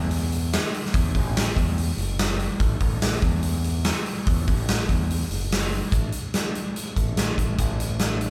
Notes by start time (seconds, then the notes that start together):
Already playing: E2
0.11 open hi-hat
0.32 open hi-hat
0.53 snare, open hi-hat
0.74 open hi-hat
0.86 snare
0.94 E2, kick, open hi-hat
1.15 A1, kick, open hi-hat
1.37 snare, open hi-hat
1.56 E2, kick, open hi-hat
1.78 open hi-hat
1.97 F#1, open hi-hat
2.19 snare, open hi-hat
2.39 open hi-hat
2.59 A1, kick, open hi-hat
2.80 A1, kick, open hi-hat
3.02 snare, open hi-hat
3.21 E2, kick, open hi-hat
3.43 open hi-hat
3.64 open hi-hat
3.84 snare, open hi-hat
4.06 open hi-hat
4.27 E2, kick, open hi-hat
4.48 A1, kick, open hi-hat
4.68 snare, open hi-hat
4.89 E2, kick, open hi-hat
5.10 open hi-hat
5.30 F#1, open hi-hat
5.52 snare, open hi-hat
5.72 open hi-hat
5.92 A1, kick, closed hi-hat
6.12 closed hi-hat
6.34 snare, closed hi-hat
6.55 closed hi-hat
6.76 closed hi-hat
6.96 A1, kick, closed hi-hat
7.17 snare, closed hi-hat
7.38 A1, kick, closed hi-hat
7.58 A1, kick, closed hi-hat
7.80 closed hi-hat
7.99 snare, closed hi-hat
8.21 closed hi-hat